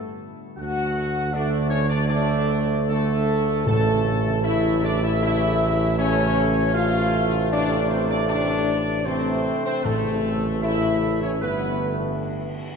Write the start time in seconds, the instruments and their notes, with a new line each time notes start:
Already playing: french horn section A3, trumpet section A4
0.57 tuba D2, trombone section D3 A3, french horn section F#4, trumpet section F#5
1.33 trombone section D3 A3, french horn section D4, trumpet section D5
1.69 french horn section C#4, trumpet section C#5
1.89 french horn section D4, trumpet section D5
2.08 french horn section D4, trumpet section D5
2.12 trombone section D3 A3
2.88 trombone section D3 A3, french horn section A3, trumpet section A4
3.66 tuba A1, timpani A2, trombone section C#3 A3, french horn section A4, trumpet section A5
4.44 trombone section C#3 A3, french horn section E4, trumpet section E5
4.83 french horn section D4, trumpet section D5
5.02 french horn section E4, trumpet section E5
5.21 trombone section C#3 A3, french horn section E4, trumpet section E5
5.99 trombone section C#3 A3, french horn section C#4, trumpet section C#5
6.74 trombone section C3 A3, french horn section F4, trumpet section F5
7.52 french horn section D4, trumpet section D5
7.89 french horn section C4, trumpet section C5
8.10 french horn section D4, trumpet section D5
8.29 french horn section D4, trumpet section D5
9.06 trombone section C3 A3, french horn section C4, trumpet section C5
9.65 french horn section C4, trumpet section C5
9.84 tuba A1, timpani A2, trombone section C#3 A3, french horn section A3, trumpet section A4
10.62 trombone section C#3 A3, french horn section E4, trumpet section E5
11.22 french horn section C#4, trumpet section C#5
11.42 tuba G1, trombone section D3 A3, french horn section B3, trumpet section B4